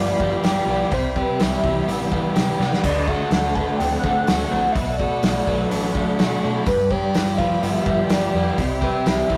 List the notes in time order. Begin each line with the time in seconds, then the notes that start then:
Already playing: G1 G2 F3 G3 B3 G4 B4 D5 F5 B5
0.19 G2 F3 G3 G4, kick
0.42 G1 G3 G4 D5, snare, open hi-hat
0.66 B1 G3 B3 E4
0.91 C2 C3 G4 C5 E5, kick, open hi-hat
1.16 G3 G4 B4, kick
1.40 C2 E3 G3 E5, snare, open hi-hat
1.63 C2 E3 G3 C5, kick
1.88 A1 B3, open hi-hat
2.12 E3 G3 B4, kick
2.35 C3 G3 G4, snare, open hi-hat
2.59 C3 G3 B3 F#4, snare
2.73 snare
2.83 D2 D3 A4 B4 D5 F#5 A5, kick, open hi-hat, crash
3.07 A3 F#4 A4 F#5, kick
3.31 D2 D3 A3, snare, open hi-hat
3.55 D3 A3 B4 A5, kick
3.77 D2 C4 G5, open hi-hat
3.99 F#5
4.04 D3 A3 A4, kick
4.27 D2 A3 F#4, snare, open hi-hat
4.49 A#1 A3 C4 E4 F#5
4.72 B1 B2 B4 E5, kick, open hi-hat
4.76 B2 D5 B5
4.97 A3 F#4 A4 D5, kick
5.23 B1 F#3 A3, snare, open hi-hat
5.47 B1 F#3 A3 B4, kick
5.71 A1 D4, open hi-hat
5.95 F#3 A3 A4, kick
6.19 B2 A3 F#4, snare, open hi-hat
6.43 B2 A3 D4 E4
6.66 G1 G2 F4 G4 B4, kick, open hi-hat
6.90 G3 G4 A4 D5, kick
7.14 G1 F3 G3, snare, open hi-hat
7.37 F3 G3 B4 F5, kick
7.62 G1 B3 E5, open hi-hat
7.86 G2 F3 G3 G4, kick
8.09 G1 G3 G4 D5, snare, open hi-hat
8.33 F2 G3 B3 E4
8.58 C2 C3 C5 E5, kick, open hi-hat
8.81 G3 G4 B4, kick
9.06 C2 E3 G3, snare, open hi-hat
9.30 C2 E3 G3 C5, kick